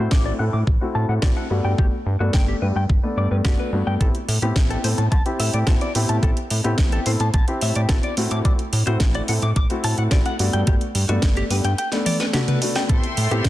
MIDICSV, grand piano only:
0, 0, Header, 1, 2, 480
1, 0, Start_track
1, 0, Tempo, 555556
1, 1543, Time_signature, 4, 2, 24, 8
1, 11656, End_track
2, 0, Start_track
2, 0, Title_t, "Grand piano"
2, 0, Program_c, 0, 0
2, 0, Note_on_c, 0, 57, 84
2, 0, Note_on_c, 0, 60, 80
2, 0, Note_on_c, 0, 64, 75
2, 0, Note_on_c, 0, 66, 92
2, 312, Note_off_c, 0, 57, 0
2, 313, Note_off_c, 0, 60, 0
2, 314, Note_off_c, 0, 64, 0
2, 316, Note_off_c, 0, 66, 0
2, 340, Note_on_c, 0, 57, 64
2, 343, Note_on_c, 0, 60, 60
2, 344, Note_on_c, 0, 64, 60
2, 348, Note_on_c, 0, 69, 74
2, 442, Note_off_c, 0, 57, 0
2, 444, Note_off_c, 0, 60, 0
2, 444, Note_off_c, 0, 64, 0
2, 446, Note_off_c, 0, 69, 0
2, 700, Note_on_c, 0, 57, 78
2, 702, Note_on_c, 0, 60, 72
2, 704, Note_on_c, 0, 64, 74
2, 707, Note_on_c, 0, 66, 91
2, 1033, Note_off_c, 0, 57, 0
2, 1034, Note_off_c, 0, 60, 0
2, 1034, Note_off_c, 0, 64, 0
2, 1036, Note_off_c, 0, 66, 0
2, 1062, Note_on_c, 0, 57, 69
2, 1063, Note_on_c, 0, 60, 66
2, 1070, Note_on_c, 0, 66, 77
2, 1223, Note_off_c, 0, 57, 0
2, 1224, Note_off_c, 0, 60, 0
2, 1227, Note_off_c, 0, 66, 0
2, 1297, Note_on_c, 0, 57, 81
2, 1298, Note_on_c, 0, 59, 75
2, 1302, Note_on_c, 0, 62, 74
2, 1306, Note_on_c, 0, 66, 92
2, 1511, Note_off_c, 0, 57, 0
2, 1512, Note_off_c, 0, 59, 0
2, 1514, Note_off_c, 0, 62, 0
2, 1516, Note_off_c, 0, 66, 0
2, 1538, Note_on_c, 0, 57, 68
2, 1540, Note_on_c, 0, 59, 60
2, 1544, Note_on_c, 0, 62, 62
2, 1546, Note_on_c, 0, 66, 77
2, 1641, Note_off_c, 0, 57, 0
2, 1642, Note_off_c, 0, 59, 0
2, 1644, Note_off_c, 0, 62, 0
2, 1645, Note_off_c, 0, 66, 0
2, 1902, Note_on_c, 0, 57, 86
2, 1903, Note_on_c, 0, 59, 79
2, 1906, Note_on_c, 0, 62, 75
2, 2233, Note_off_c, 0, 57, 0
2, 2234, Note_off_c, 0, 59, 0
2, 2236, Note_off_c, 0, 62, 0
2, 2260, Note_on_c, 0, 57, 64
2, 2263, Note_on_c, 0, 59, 60
2, 2267, Note_on_c, 0, 62, 60
2, 2268, Note_on_c, 0, 67, 73
2, 2362, Note_off_c, 0, 57, 0
2, 2364, Note_off_c, 0, 59, 0
2, 2365, Note_off_c, 0, 62, 0
2, 2366, Note_off_c, 0, 67, 0
2, 2620, Note_on_c, 0, 57, 82
2, 2621, Note_on_c, 0, 59, 77
2, 2625, Note_on_c, 0, 62, 73
2, 2952, Note_off_c, 0, 57, 0
2, 2953, Note_off_c, 0, 59, 0
2, 2955, Note_off_c, 0, 62, 0
2, 2976, Note_on_c, 0, 57, 84
2, 2977, Note_on_c, 0, 59, 76
2, 2981, Note_on_c, 0, 62, 77
2, 2984, Note_on_c, 0, 66, 95
2, 3191, Note_off_c, 0, 57, 0
2, 3191, Note_off_c, 0, 59, 0
2, 3193, Note_off_c, 0, 62, 0
2, 3195, Note_off_c, 0, 66, 0
2, 3220, Note_on_c, 0, 57, 70
2, 3222, Note_on_c, 0, 59, 70
2, 3226, Note_on_c, 0, 62, 66
2, 3228, Note_on_c, 0, 66, 79
2, 3433, Note_off_c, 0, 57, 0
2, 3434, Note_off_c, 0, 59, 0
2, 3436, Note_off_c, 0, 62, 0
2, 3437, Note_off_c, 0, 66, 0
2, 3460, Note_on_c, 0, 59, 71
2, 3462, Note_on_c, 0, 60, 64
2, 3466, Note_on_c, 0, 64, 65
2, 3468, Note_on_c, 0, 67, 75
2, 3562, Note_off_c, 0, 59, 0
2, 3563, Note_off_c, 0, 60, 0
2, 3565, Note_off_c, 0, 64, 0
2, 3566, Note_off_c, 0, 67, 0
2, 3820, Note_on_c, 0, 59, 89
2, 3824, Note_on_c, 0, 60, 76
2, 3825, Note_on_c, 0, 64, 77
2, 3829, Note_on_c, 0, 67, 93
2, 4152, Note_off_c, 0, 59, 0
2, 4154, Note_off_c, 0, 60, 0
2, 4155, Note_off_c, 0, 64, 0
2, 4157, Note_off_c, 0, 67, 0
2, 4180, Note_on_c, 0, 59, 67
2, 4181, Note_on_c, 0, 60, 63
2, 4184, Note_on_c, 0, 64, 60
2, 4186, Note_on_c, 0, 69, 76
2, 4282, Note_off_c, 0, 59, 0
2, 4283, Note_off_c, 0, 60, 0
2, 4284, Note_off_c, 0, 64, 0
2, 4285, Note_off_c, 0, 69, 0
2, 4541, Note_on_c, 0, 60, 74
2, 4544, Note_on_c, 0, 64, 74
2, 4545, Note_on_c, 0, 67, 93
2, 4873, Note_off_c, 0, 60, 0
2, 4874, Note_off_c, 0, 64, 0
2, 4875, Note_off_c, 0, 67, 0
2, 4899, Note_on_c, 0, 59, 69
2, 4903, Note_on_c, 0, 60, 66
2, 4905, Note_on_c, 0, 64, 63
2, 4907, Note_on_c, 0, 66, 75
2, 5061, Note_off_c, 0, 59, 0
2, 5064, Note_off_c, 0, 60, 0
2, 5065, Note_off_c, 0, 64, 0
2, 5066, Note_off_c, 0, 66, 0
2, 5139, Note_on_c, 0, 59, 82
2, 5142, Note_on_c, 0, 60, 76
2, 5144, Note_on_c, 0, 64, 75
2, 5145, Note_on_c, 0, 67, 92
2, 5352, Note_off_c, 0, 59, 0
2, 5354, Note_off_c, 0, 60, 0
2, 5355, Note_off_c, 0, 64, 0
2, 5355, Note_off_c, 0, 67, 0
2, 5377, Note_on_c, 0, 59, 69
2, 5381, Note_on_c, 0, 60, 62
2, 5383, Note_on_c, 0, 64, 65
2, 5387, Note_on_c, 0, 67, 75
2, 5481, Note_off_c, 0, 59, 0
2, 5483, Note_off_c, 0, 60, 0
2, 5484, Note_off_c, 0, 64, 0
2, 5486, Note_off_c, 0, 67, 0
2, 5738, Note_on_c, 0, 59, 87
2, 5739, Note_on_c, 0, 60, 80
2, 5744, Note_on_c, 0, 64, 81
2, 5747, Note_on_c, 0, 67, 92
2, 6071, Note_off_c, 0, 59, 0
2, 6072, Note_off_c, 0, 60, 0
2, 6074, Note_off_c, 0, 64, 0
2, 6076, Note_off_c, 0, 67, 0
2, 6096, Note_on_c, 0, 59, 65
2, 6099, Note_on_c, 0, 60, 58
2, 6102, Note_on_c, 0, 64, 61
2, 6105, Note_on_c, 0, 69, 70
2, 6200, Note_off_c, 0, 59, 0
2, 6202, Note_off_c, 0, 60, 0
2, 6203, Note_off_c, 0, 64, 0
2, 6205, Note_off_c, 0, 69, 0
2, 6460, Note_on_c, 0, 60, 75
2, 6462, Note_on_c, 0, 64, 73
2, 6466, Note_on_c, 0, 67, 88
2, 6793, Note_off_c, 0, 60, 0
2, 6793, Note_off_c, 0, 64, 0
2, 6795, Note_off_c, 0, 67, 0
2, 6819, Note_on_c, 0, 59, 69
2, 6819, Note_on_c, 0, 60, 65
2, 6823, Note_on_c, 0, 64, 63
2, 6981, Note_off_c, 0, 59, 0
2, 6982, Note_off_c, 0, 60, 0
2, 6983, Note_off_c, 0, 64, 0
2, 7060, Note_on_c, 0, 57, 79
2, 7062, Note_on_c, 0, 60, 75
2, 7064, Note_on_c, 0, 64, 73
2, 7066, Note_on_c, 0, 66, 92
2, 7273, Note_off_c, 0, 57, 0
2, 7274, Note_off_c, 0, 60, 0
2, 7275, Note_off_c, 0, 64, 0
2, 7276, Note_off_c, 0, 66, 0
2, 7298, Note_on_c, 0, 57, 71
2, 7302, Note_on_c, 0, 60, 63
2, 7305, Note_on_c, 0, 64, 65
2, 7307, Note_on_c, 0, 66, 77
2, 7401, Note_off_c, 0, 57, 0
2, 7403, Note_off_c, 0, 60, 0
2, 7405, Note_off_c, 0, 64, 0
2, 7406, Note_off_c, 0, 66, 0
2, 7655, Note_on_c, 0, 57, 85
2, 7660, Note_on_c, 0, 60, 80
2, 7660, Note_on_c, 0, 64, 79
2, 7663, Note_on_c, 0, 66, 96
2, 7990, Note_off_c, 0, 57, 0
2, 7992, Note_off_c, 0, 60, 0
2, 7993, Note_off_c, 0, 64, 0
2, 7994, Note_off_c, 0, 66, 0
2, 8019, Note_on_c, 0, 57, 64
2, 8022, Note_on_c, 0, 60, 62
2, 8025, Note_on_c, 0, 64, 61
2, 8027, Note_on_c, 0, 69, 76
2, 8121, Note_off_c, 0, 57, 0
2, 8123, Note_off_c, 0, 60, 0
2, 8125, Note_off_c, 0, 64, 0
2, 8126, Note_off_c, 0, 69, 0
2, 8377, Note_on_c, 0, 57, 83
2, 8381, Note_on_c, 0, 60, 75
2, 8385, Note_on_c, 0, 64, 77
2, 8386, Note_on_c, 0, 66, 92
2, 8711, Note_off_c, 0, 57, 0
2, 8713, Note_off_c, 0, 60, 0
2, 8715, Note_off_c, 0, 64, 0
2, 8716, Note_off_c, 0, 66, 0
2, 8738, Note_on_c, 0, 57, 71
2, 8741, Note_on_c, 0, 60, 66
2, 8743, Note_on_c, 0, 64, 64
2, 8747, Note_on_c, 0, 66, 79
2, 8901, Note_off_c, 0, 57, 0
2, 8903, Note_off_c, 0, 60, 0
2, 8904, Note_off_c, 0, 64, 0
2, 8905, Note_off_c, 0, 66, 0
2, 8978, Note_on_c, 0, 57, 79
2, 8981, Note_on_c, 0, 59, 73
2, 8984, Note_on_c, 0, 62, 79
2, 8985, Note_on_c, 0, 66, 90
2, 9192, Note_off_c, 0, 57, 0
2, 9193, Note_off_c, 0, 59, 0
2, 9195, Note_off_c, 0, 62, 0
2, 9195, Note_off_c, 0, 66, 0
2, 9219, Note_on_c, 0, 57, 74
2, 9221, Note_on_c, 0, 59, 67
2, 9224, Note_on_c, 0, 62, 63
2, 9229, Note_on_c, 0, 66, 74
2, 9322, Note_off_c, 0, 57, 0
2, 9323, Note_off_c, 0, 59, 0
2, 9324, Note_off_c, 0, 62, 0
2, 9326, Note_off_c, 0, 66, 0
2, 9578, Note_on_c, 0, 57, 88
2, 9582, Note_on_c, 0, 59, 80
2, 9583, Note_on_c, 0, 62, 84
2, 9912, Note_off_c, 0, 57, 0
2, 9913, Note_off_c, 0, 59, 0
2, 9914, Note_off_c, 0, 62, 0
2, 9936, Note_on_c, 0, 57, 68
2, 9941, Note_on_c, 0, 59, 59
2, 9942, Note_on_c, 0, 62, 60
2, 9945, Note_on_c, 0, 67, 74
2, 10040, Note_off_c, 0, 57, 0
2, 10043, Note_off_c, 0, 59, 0
2, 10043, Note_off_c, 0, 62, 0
2, 10045, Note_off_c, 0, 67, 0
2, 10300, Note_on_c, 0, 57, 80
2, 10304, Note_on_c, 0, 59, 75
2, 10306, Note_on_c, 0, 62, 76
2, 10632, Note_off_c, 0, 57, 0
2, 10634, Note_off_c, 0, 59, 0
2, 10635, Note_off_c, 0, 62, 0
2, 10658, Note_on_c, 0, 57, 84
2, 10660, Note_on_c, 0, 59, 79
2, 10662, Note_on_c, 0, 62, 76
2, 10665, Note_on_c, 0, 66, 93
2, 10872, Note_off_c, 0, 57, 0
2, 10873, Note_off_c, 0, 59, 0
2, 10874, Note_off_c, 0, 62, 0
2, 10875, Note_off_c, 0, 66, 0
2, 10897, Note_on_c, 0, 57, 77
2, 10900, Note_on_c, 0, 59, 68
2, 10903, Note_on_c, 0, 62, 71
2, 10907, Note_on_c, 0, 66, 80
2, 11111, Note_off_c, 0, 57, 0
2, 11113, Note_off_c, 0, 59, 0
2, 11114, Note_off_c, 0, 62, 0
2, 11116, Note_off_c, 0, 66, 0
2, 11139, Note_on_c, 0, 59, 68
2, 11143, Note_on_c, 0, 60, 65
2, 11145, Note_on_c, 0, 64, 65
2, 11149, Note_on_c, 0, 67, 76
2, 11242, Note_off_c, 0, 59, 0
2, 11244, Note_off_c, 0, 60, 0
2, 11245, Note_off_c, 0, 64, 0
2, 11247, Note_off_c, 0, 67, 0
2, 11499, Note_on_c, 0, 59, 86
2, 11503, Note_on_c, 0, 60, 80
2, 11506, Note_on_c, 0, 64, 78
2, 11507, Note_on_c, 0, 67, 95
2, 11656, Note_off_c, 0, 59, 0
2, 11656, Note_off_c, 0, 60, 0
2, 11656, Note_off_c, 0, 64, 0
2, 11656, Note_off_c, 0, 67, 0
2, 11656, End_track
0, 0, End_of_file